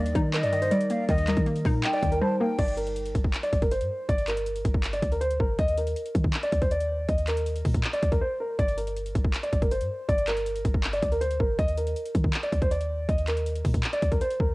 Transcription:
Already playing: D#2 D#3 G3 A#3 D#4 A#4 D5
0.06 closed hi-hat
0.15 D#3 D#4, kick, closed hi-hat
0.34 A#4 D#5, clap, closed hi-hat
0.43 G2 D5, closed hi-hat
0.53 D#3, closed hi-hat
0.62 C5, closed hi-hat
0.71 G3 D5, closed hi-hat
0.81 closed hi-hat
0.90 A#3 F5, closed hi-hat
1.09 D#2 D#3 D#5, kick, closed hi-hat
1.18 closed hi-hat
1.27 G3 A#4, clap, closed hi-hat
1.37 D#3, kick, closed hi-hat
1.46 A#3, closed hi-hat
1.56 closed hi-hat
1.65 A#2 D#4, kick, open hi-hat
1.84 D#5 G5, clap, closed hi-hat
1.93 D5, closed hi-hat
2.02 D#2 D#3, kick, closed hi-hat
2.12 A#4, closed hi-hat
2.21 G3 C5 A5
2.40 A#3 A#4 G5
2.59 G1 D5, kick, closed hi-hat, crash
2.68 closed hi-hat
2.77 A#4, closed hi-hat
2.87 closed hi-hat
2.96 closed hi-hat
3.06 closed hi-hat
3.15 G1, kick, closed hi-hat
3.24 kick
3.34 clap, closed hi-hat
3.43 D5, closed hi-hat
3.52 G1, kick, closed hi-hat
3.62 A#4, kick, closed hi-hat
3.71 C5, closed hi-hat
3.81 G2, closed hi-hat
4.08 G1 D5, kick, closed hi-hat
4.18 closed hi-hat
4.27 A#4, clap, closed hi-hat
4.37 closed hi-hat
4.46 closed hi-hat
4.56 closed hi-hat
4.65 G1, kick, closed hi-hat
4.74 kick
4.84 clap, closed hi-hat
4.93 D5, closed hi-hat
5.02 D2, kick, closed hi-hat
5.12 A#4, closed hi-hat
5.21 C5, closed hi-hat
5.31 closed hi-hat
5.40 G1 A#4, kick
5.59 D#2 D#5, kick, closed hi-hat
5.68 closed hi-hat
5.78 A#4, closed hi-hat
5.87 closed hi-hat
5.96 closed hi-hat
6.06 closed hi-hat
6.15 D#3, kick, closed hi-hat
6.24 kick
6.34 clap, closed hi-hat
6.43 D5, closed hi-hat
6.52 D#2, kick, closed hi-hat
6.62 C5, kick, closed hi-hat
6.71 D5, closed hi-hat
6.81 closed hi-hat
7.09 D#2 D#5, kick, closed hi-hat
7.18 closed hi-hat
7.27 A#4, clap, closed hi-hat
7.37 closed hi-hat
7.46 closed hi-hat
7.56 closed hi-hat
7.65 A#2, kick, closed hi-hat, open hi-hat
7.74 kick, closed hi-hat
7.84 clap, closed hi-hat
7.93 D5, closed hi-hat
8.02 D#2, kick, closed hi-hat
8.12 A#4, kick, closed hi-hat
8.21 C5
8.40 A#4
8.59 G1 D5, kick, closed hi-hat
8.68 closed hi-hat
8.77 A#4, closed hi-hat
8.87 closed hi-hat
8.96 closed hi-hat
9.06 closed hi-hat
9.15 G1, kick, closed hi-hat
9.24 kick
9.34 clap, closed hi-hat
9.43 D5, closed hi-hat
9.52 G1, kick, closed hi-hat
9.62 A#4, kick, closed hi-hat
9.71 C5, closed hi-hat
9.81 G2, closed hi-hat
10.08 G1 D5, kick, closed hi-hat
10.18 closed hi-hat
10.28 A#4, clap, closed hi-hat
10.37 closed hi-hat
10.46 closed hi-hat
10.56 closed hi-hat
10.65 G1, kick, closed hi-hat
10.74 kick
10.84 clap, closed hi-hat
10.93 D5, closed hi-hat
11.02 D2, kick, closed hi-hat
11.12 A#4, closed hi-hat
11.21 C5, closed hi-hat
11.31 closed hi-hat
11.40 G1 A#4, kick
11.59 D#2 D#5, kick, closed hi-hat
11.68 closed hi-hat
11.78 A#4, closed hi-hat
11.87 closed hi-hat
11.96 closed hi-hat
12.06 closed hi-hat
12.15 D#3, kick, closed hi-hat
12.24 kick
12.34 clap, closed hi-hat
12.43 D5, closed hi-hat
12.53 D#2, kick, closed hi-hat
12.62 C5, kick, closed hi-hat
12.71 D5, closed hi-hat
12.81 closed hi-hat
13.09 D#2 D#5, kick, closed hi-hat
13.18 closed hi-hat
13.28 A#4, clap, closed hi-hat
13.37 closed hi-hat
13.46 closed hi-hat
13.56 closed hi-hat
13.65 A#2, kick, closed hi-hat, open hi-hat
13.74 kick, closed hi-hat
13.84 clap, closed hi-hat
13.93 D5, closed hi-hat
14.03 D#2, kick, closed hi-hat
14.12 A#4, kick, closed hi-hat
14.21 C5, closed hi-hat
14.31 closed hi-hat
14.40 D#2 A#4, kick

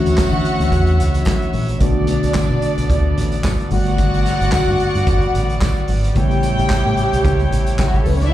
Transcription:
Already playing: E3 A3 C#4 D4 E4 F#4 C#5 E5 F#5
0.06 D2, closed hi-hat
0.17 kick, snare, clap, tambourine, high conga
0.33 D3
0.45 closed hi-hat
0.60 D2, closed hi-hat
0.72 E2, kick, closed hi-hat, low conga
0.87 closed hi-hat
0.99 C#2, closed hi-hat
1.14 closed hi-hat
1.25 kick, snare, clap, tambourine, high conga
1.42 closed hi-hat
1.53 A#1, open hi-hat, high conga
1.69 closed hi-hat
1.79 B1 D3 A3 B3 D4 F#4 A4 D5, kick, closed hi-hat, muted conga
2.07 closed hi-hat, muted conga
2.23 B1, closed hi-hat
2.34 kick, snare, clap, tambourine, high conga
2.50 B2
2.62 closed hi-hat
2.78 B1, closed hi-hat
2.90 D2, kick, closed hi-hat, low conga
3.16 A1, closed hi-hat
3.32 closed hi-hat
3.43 kick, snare, clap, tambourine, high conga
3.60 closed hi-hat
3.70 G1 D3 G3 A3 B3 F#4 D5 F#5, open hi-hat, high conga
3.86 closed hi-hat
3.98 kick, closed hi-hat, muted conga
4.14 closed hi-hat
4.26 snare, closed hi-hat, muted conga
4.41 G1, closed hi-hat
4.52 muted fingered electric bass stroke, kick, snare, clap, tambourine, high conga
4.68 G2
4.80 closed hi-hat
4.95 G2, closed hi-hat
5.07 G1, kick, closed hi-hat, muted conga, low conga
5.21 closed hi-hat
5.35 A1, closed hi-hat
5.50 closed hi-hat
5.61 kick, snare, clap, tambourine, high conga
5.77 closed hi-hat
5.88 G#1, open hi-hat, high conga
6.04 closed hi-hat
6.14 A1 C#3 G3 A3 B3 E4 G4 C#5 G5, kick, closed hi-hat, muted conga
6.31 closed hi-hat
6.43 closed hi-hat, muted conga
6.59 A1, closed hi-hat
6.70 kick, snare, clap, tambourine, high conga
6.86 A2
6.97 closed hi-hat
7.13 B1, closed hi-hat
7.24 C#2, kick, closed hi-hat, muted conga, low conga
7.39 closed hi-hat
7.52 A1, closed hi-hat
7.67 closed hi-hat
7.78 kick, snare, clap, tambourine, high conga
7.87 F#3 F#4
7.94 G3 G4, kick, closed hi-hat
8.01 A3 A4
8.06 C#2 B3 B4, open hi-hat, high conga
8.14 C#4 C#5
8.21 D4 D5, closed hi-hat
8.28 E4 E5

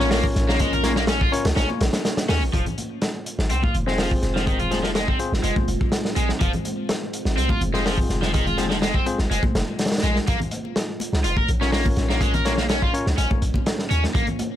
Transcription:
Already playing: A#1 A#3 C#4 F4 C#5
0.00 C#4 F4 A#4 C#5, snare
0.11 A#3, snare, open hi-hat
0.24 kick, muted conga
0.35 A#1, snare, closed hi-hat
0.49 A#3, snare
0.59 G#3, kick, closed hi-hat, muted conga
0.73 A#4, closed hi-hat, low conga
0.83 A#3 C#4 F4 A#4 C#5, snare, closed hi-hat, high conga
0.96 A#3, snare
1.07 C#4, snare, closed hi-hat, muted conga
1.21 F4, kick
1.32 C#4 F4 A#4 C#5, closed hi-hat
1.45 C#2, snare, closed hi-hat, muted conga
1.56 A#1 C#4, snare, closed hi-hat
1.70 high conga
1.81 A#1, snare, closed hi-hat
1.93 snare, closed hi-hat, muted conga
2.05 snare, closed hi-hat
2.17 snare, closed hi-hat
2.29 D#2 C#4, snare, open hi-hat, muted conga
2.42 A#1
2.53 F1 F3 G#3 C4 F4 C5, kick, closed hi-hat
2.66 closed hi-hat, low conga
2.78 closed hi-hat, high conga
3.02 snare, closed hi-hat
3.26 closed hi-hat
3.39 G#1, snare
3.50 C2 C4, closed hi-hat
3.63 F4, kick, high conga
3.74 F1, closed hi-hat, low conga
3.87 G#3 C4 F4 G#4 C5, snare
3.98 F3, snare, open hi-hat
4.11 kick
4.22 F1, snare, closed hi-hat
4.36 F3, snare
4.47 D#3, kick, closed hi-hat
4.59 F4, closed hi-hat, low conga
4.71 F3 C4 F4 G#4 C5, snare, closed hi-hat, high conga
4.83 F3, snare
4.95 G#3, snare, closed hi-hat
5.08 C4, kick
5.19 C4 F4 G#4 C5, closed hi-hat
5.32 G#1, snare
5.44 F1 G#3, closed hi-hat
5.56 kick, high conga
5.68 F1, closed hi-hat
5.81 kick
5.92 snare, closed hi-hat
6.05 snare
6.16 A#1 G#3, closed hi-hat
6.29 snare
6.40 F1 F3, kick, closed hi-hat
6.53 closed hi-hat, low conga
6.65 closed hi-hat, high conga
6.89 snare, closed hi-hat
7.13 closed hi-hat
7.25 G#1, snare
7.37 C2 C4, closed hi-hat
7.49 F4, kick, high conga
7.61 F1, closed hi-hat, low conga
7.74 G#3 C4 F4 G#4 C5, snare
7.85 F3, snare, open hi-hat
7.98 kick
8.09 F1, snare, closed hi-hat
8.22 F3, snare
8.34 D#3, kick, closed hi-hat
8.46 F4, closed hi-hat, low conga
8.58 F3 C4 F4 G#4 C5, snare, closed hi-hat, high conga
8.70 F3, snare
8.82 G#3, snare, closed hi-hat
8.94 C4, kick
9.06 C4 F4 G#4 C5, closed hi-hat
9.18 G#1, snare
9.31 F1 G#3, closed hi-hat
9.43 kick, high conga
9.55 F1, snare, closed hi-hat
9.79 snare, closed hi-hat
9.85 snare, closed hi-hat
9.92 snare, closed hi-hat
9.97 snare, closed hi-hat
10.03 A#1 G#3, closed hi-hat
10.16 snare
10.27 A#1 A#3 C#4 C#5, kick, closed hi-hat
10.40 closed hi-hat, low conga
10.51 closed hi-hat, high conga
10.65 muted conga
10.76 snare, closed hi-hat
11.00 closed hi-hat, muted conga
11.13 C#2, snare
11.24 F1 F4, closed hi-hat
11.37 A#4, kick, high conga
11.48 A#1, closed hi-hat, muted conga, low conga
11.61 C#4 F4 A#4 C#5, snare
11.72 A#3, snare, open hi-hat
11.86 kick, muted conga
11.96 A#1, snare, closed hi-hat
12.09 A#3, snare
12.21 G#3, kick, closed hi-hat
12.34 A#4, closed hi-hat, muted conga, low conga
12.45 A#3 C#4 F4 A#4 C#5, snare, closed hi-hat, high conga
12.58 A#3, snare
12.69 C#4, snare, closed hi-hat, muted conga
12.82 F4, kick
12.94 C#4 F4 A#4 C#5, closed hi-hat
13.06 C#2, snare
13.18 A#1 C#4, closed hi-hat, muted conga
13.31 kick, high conga
13.42 A#1, closed hi-hat
13.54 kick, muted conga
13.66 snare, closed hi-hat
13.79 snare
13.90 D#2 C#4, closed hi-hat
14.04 snare, muted conga
14.14 A#1 A#3, kick, closed hi-hat
14.27 closed hi-hat, low conga
14.39 closed hi-hat, muted conga, high conga

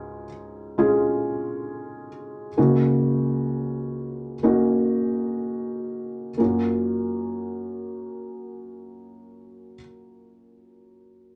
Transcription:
Already playing: C#2 G#2 G#3 C#4 F4 G#4 G#5
0.78 G#3 C#4 F4 G#4
2.57 C#2 C#3 A#3 C#4 D#4 F#4
4.43 A#3 C#4 D#4 F#4
6.37 F#2 A#3 C#4 F4
6.42 F#4

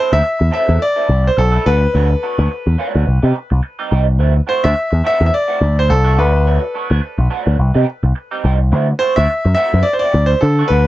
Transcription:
Already playing: C5
0.10 D2 F#3 C4 E4 A4 E5
0.24 muted clean electric guitar stroke
0.39 E2, muted clean electric guitar stroke
0.51 F#3 C4 E4 A4 E5
0.68 E2 F#3 C4 E4 A4
0.80 D5, muted clean electric guitar stroke
0.96 F#3 C4 E4 A4
1.09 C2, muted clean electric guitar stroke
1.24 C5, muted clean electric guitar stroke
1.36 B1 A4, muted clean electric guitar stroke
1.52 F#3 C4 E4 A4
1.66 D2 F#3 B3 D4 F#4 B4
1.81 muted clean electric guitar stroke
1.94 D2 F#3 B3 D4 F#4
2.09 muted clean electric guitar stroke
2.23 F#3 B3 D4 F#4
2.38 D2 F#3 B3 D4 F#4
2.51 muted clean electric guitar stroke
2.67 E2, muted clean electric guitar stroke
2.78 F#3 B3 D4 F#4
2.94 D2 F#3 B3 D4 F#4
3.07 C2, muted clean electric guitar stroke
3.22 C3 G3 C4 D#4 G4
3.36 muted clean electric guitar stroke
3.50 C2, muted clean electric guitar stroke
3.63 muted clean electric guitar stroke
3.79 G3 C4 D#4 G4
3.91 C2 G3 C4 D#4 G4
4.07 muted clean electric guitar stroke
4.19 D2 E3 A3 C4 F#4
4.35 muted clean electric guitar stroke
4.47 E3 A3 C4 F#4 C5
4.63 D2 E3 A3 C4 F#4 E5
4.75 muted clean electric guitar stroke
4.91 E2, muted clean electric guitar stroke
5.04 E3 A3 C4 F#4 E5
5.20 E2 E3 A3 C4 F#4
5.26 E5
5.34 D5
5.48 E3 A3 C4 F#4
5.60 D2, muted clean electric guitar stroke
5.76 C5, muted clean electric guitar stroke
5.88 C2 A4, muted clean electric guitar stroke
6.04 E3 A3 C4 F#4
6.16 D2 F#3 B3 D4 F#4 B4
6.32 muted clean electric guitar stroke
6.46 F#3 B3 D4 F#4
6.62 muted clean electric guitar stroke
6.74 F#3 B3 D4 F#4
6.90 D2 F#3 B3 D4 F#4
7.02 muted clean electric guitar stroke
7.18 B1, muted clean electric guitar stroke
7.30 F#3 B3 D4 F#4
7.46 D2 F#3 B3 D4 F#4
7.58 C2, muted clean electric guitar stroke
7.74 C3 G3 C4 D#4 G4
7.88 muted clean electric guitar stroke
8.03 C2, muted clean electric guitar stroke
8.15 muted clean electric guitar stroke
8.31 G3 C4 D#4 G4
8.44 C2 G3 C4 D#4 G4
8.60 muted clean electric guitar stroke
8.72 D2 E3 A3 C4 F#4
8.89 muted clean electric guitar stroke
8.99 E3 A3 C4 F#4 C5
9.16 D2 E3 A3 C4 F#4 E5
9.30 muted clean electric guitar stroke
9.45 F#2, muted clean electric guitar stroke
9.55 E3 A3 C4 F#4 E5
9.73 F#2 E3 A3 C4 F#4
9.83 D5, muted clean electric guitar stroke
9.93 C5
9.99 E3 A3 C4 F#4 D5
10.14 D2, muted clean electric guitar stroke
10.26 C5
10.31 muted clean electric guitar stroke
10.41 D3 A4, muted clean electric guitar stroke
10.59 E3 A3 C4 F#4
10.68 D2 F#3 B3 D4 F#4 B4

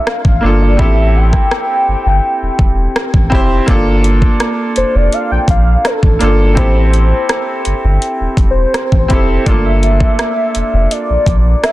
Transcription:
0.07 F5, cross-stick
0.25 A1, kick
0.41 G1 A#3 D4 F4
0.46 A4
0.62 D5
0.77 A1 C4 E4 G4 E5, kick
0.82 A4
1.16 G5
1.33 kick, cross-stick
1.51 cross-stick
1.88 G1
2.06 G1
2.42 E1
2.59 E1, kick
2.96 cross-stick
3.14 A1, kick
3.30 F1 C4 E4 G4, kick
3.35 C5
3.66 G1 A#3 D4 F4, kick, closed hi-hat
3.71 A4
4.04 closed hi-hat
4.22 kick
4.40 cross-stick, closed hi-hat
4.76 F1 C5, closed hi-hat
4.95 F1 D5
5.12 F5, closed hi-hat
5.31 A#1 G5
5.48 A#1 F5, kick, closed hi-hat
5.85 A4, cross-stick, closed hi-hat
6.03 A1, kick
6.19 G1 A#3 D4 F4, closed hi-hat
6.24 A4
6.55 A1 C4 E4 G4 C5, kick, closed hi-hat
6.60 A4
6.93 closed hi-hat
7.29 cross-stick, closed hi-hat
7.65 G1, closed hi-hat
7.84 G1
8.02 closed hi-hat
8.21 E1
8.37 E1, kick, closed hi-hat
8.50 C5
8.74 cross-stick, closed hi-hat
8.92 A1, kick
8.99 C5
9.08 F1 C4 E4 G4, kick, closed hi-hat
9.13 A4
9.44 G1 A3 D4 F4 D5, kick, closed hi-hat
9.49 A#3 A4
9.65 E5
9.83 E5, closed hi-hat
10.00 kick
10.19 cross-stick, closed hi-hat
10.55 F1, closed hi-hat
10.73 F1
10.91 D5, closed hi-hat
11.10 A#1
11.26 A#1, kick, closed hi-hat
11.64 E5, cross-stick, closed hi-hat

